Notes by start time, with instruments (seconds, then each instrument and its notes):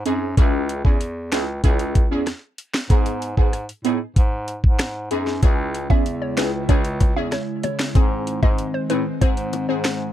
0.05 bass clarinet F#2, synth stab C4 D#4 G#4, closed hi-hat
0.37 bass clarinet C#2, synth stab C#4 E4 G#4, kick, closed hi-hat
0.69 closed hi-hat
0.84 bass clarinet E2, synth stab C#4 E4 G#4, kick
1.01 closed hi-hat
1.32 bass clarinet C#2, synth stab C#4 E4 G#4, finger snap, snare, closed hi-hat
1.63 bass clarinet C#2, synth stab C#4 E4 G#4, kick, closed hi-hat
1.79 closed hi-hat
1.95 kick, closed hi-hat
2.11 bass clarinet E2, synth stab C#4 E4 G#4
2.27 cross-stick, snare, closed hi-hat
2.58 closed hi-hat
2.74 finger snap, snare
2.90 bass clarinet G#2, synth stab B3 D#4 G#4, kick, closed hi-hat
3.06 closed hi-hat
3.22 closed hi-hat
3.37 bass clarinet G#2, synth stab B3 D#4 G#4, kick
3.53 cross-stick, closed hi-hat
3.69 closed hi-hat
3.84 bass clarinet A2, synth stab B3 D#4 G#4, closed hi-hat
4.16 bass clarinet G#2, kick, closed hi-hat
4.48 closed hi-hat
4.64 bass clarinet G#2, kick
4.79 finger snap, cross-stick, snare, closed hi-hat
5.11 bass clarinet F#2, synth stab B3 D#4 G#4, closed hi-hat
5.27 snare
5.42 bass clarinet C#2, analog synth pad C#3 G#3 E4, synth stab C#4 E4 G#4, kick, closed hi-hat, high bongo
5.75 closed hi-hat
5.90 bass clarinet E2, synth stab C#4 E4 G#4, synth pluck E5, kick, high bongo
6.06 closed hi-hat
6.22 synth pluck C#5
6.37 bass clarinet C#2, synth stab C#4 E4 G#4, synth pluck B4, finger snap, snare, closed hi-hat, high bongo
6.69 bass clarinet C#2, synth stab C#4 E4 G#4, synth pluck C#5, kick, closed hi-hat, high bongo
6.85 closed hi-hat
7.00 kick, closed hi-hat, high bongo
7.16 bass clarinet E2, synth stab C#4 E4 G#4, synth pluck E5
7.32 synth pluck C#5, cross-stick, snare, closed hi-hat
7.63 synth pluck C#5, closed hi-hat, low bongo
7.79 finger snap, snare
7.95 bass clarinet G#2, analog synth pad D#3 C4, synth stab C4 D#4 G#4, kick, closed hi-hat, high bongo
8.27 closed hi-hat
8.42 bass clarinet G#2, synth stab C4 D#4 G#4, synth pluck D#5, kick, high bongo
8.58 closed hi-hat
8.74 synth pluck C5
8.90 bass clarinet A2, synth stab C4 D#4 G#4, synth pluck B4, closed hi-hat, high bongo
9.21 bass clarinet G#2, synth stab C4 D#4 G#4, synth pluck C5, kick, closed hi-hat, high bongo
9.37 closed hi-hat
9.53 closed hi-hat, high bongo
9.69 bass clarinet G#2, synth stab C4 D#4 G#4, synth pluck C5
9.84 finger snap, cross-stick, snare, closed hi-hat